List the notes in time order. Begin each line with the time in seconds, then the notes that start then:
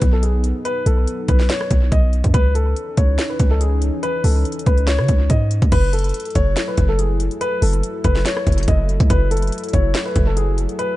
Already playing: F#3 B3 D#4 B4
0.02 B1, kick, closed hi-hat
0.13 A4
0.23 G#4, closed hi-hat
0.44 closed hi-hat
0.65 B4, closed hi-hat
0.86 B1 A4, closed hi-hat
1.08 closed hi-hat
1.28 B1 B4, kick, closed hi-hat
1.40 snare
1.49 C#5, snare, closed hi-hat
1.61 cross-stick
1.71 B1, kick, closed hi-hat
1.92 B1 D#5, kick, closed hi-hat
2.13 closed hi-hat
2.24 F#2, kick, closed hi-hat
2.34 C#2 E3 C#4 D#4 B4, kick, closed hi-hat
2.55 A4, closed hi-hat
2.76 closed hi-hat
2.97 C#2 C#5, kick, closed hi-hat
3.19 snare, closed hi-hat
3.30 B4
3.39 C#2, kick, closed hi-hat
3.51 A4
3.61 G#4, closed hi-hat
3.82 closed hi-hat
4.03 B4, closed hi-hat
4.24 C#2 A4, open hi-hat
4.45 closed hi-hat
4.52 closed hi-hat
4.59 closed hi-hat
4.66 C#2 B4, kick, closed hi-hat
4.78 closed hi-hat
4.87 C#5, snare, closed hi-hat
4.99 C#3, cross-stick
5.08 C#2, kick, closed hi-hat
5.30 G#2 D#5, kick, closed hi-hat
5.51 closed hi-hat
5.62 C#2, kick, closed hi-hat
5.72 F#1 F#3 E4 A4 B4, kick, closed hi-hat, crash
5.93 A4, closed hi-hat
5.99 closed hi-hat
6.04 closed hi-hat
6.09 closed hi-hat
6.14 closed hi-hat
6.20 closed hi-hat
6.25 closed hi-hat
6.30 closed hi-hat
6.35 F#1 C#5, kick, closed hi-hat
6.57 snare, closed hi-hat
6.68 B4
6.77 F#1, kick, closed hi-hat
6.89 A4
6.99 G#4, closed hi-hat
7.20 closed hi-hat
7.31 closed hi-hat
7.41 B4, closed hi-hat
7.62 F#1 A4, closed hi-hat, open hi-hat
7.73 closed hi-hat
7.83 closed hi-hat
8.04 F#1 B4, kick, closed hi-hat
8.16 snare
8.25 C#5, snare, closed hi-hat
8.37 cross-stick
8.47 F#1, kick, closed hi-hat
8.52 closed hi-hat
8.58 closed hi-hat
8.63 closed hi-hat
8.68 F#1 D#5, kick, closed hi-hat
8.89 closed hi-hat
9.00 C#2, kick, closed hi-hat
9.10 F#1 B4, kick, closed hi-hat
9.31 A4, closed hi-hat
9.37 closed hi-hat
9.42 closed hi-hat
9.47 closed hi-hat
9.52 closed hi-hat
9.58 closed hi-hat
9.64 closed hi-hat
9.69 closed hi-hat
9.73 F#1 C#5, kick, closed hi-hat
9.95 snare, closed hi-hat
10.06 B4
10.16 F#1, kick, closed hi-hat
10.27 A4
10.37 G#4, closed hi-hat
10.58 closed hi-hat
10.69 closed hi-hat
10.79 B4, closed hi-hat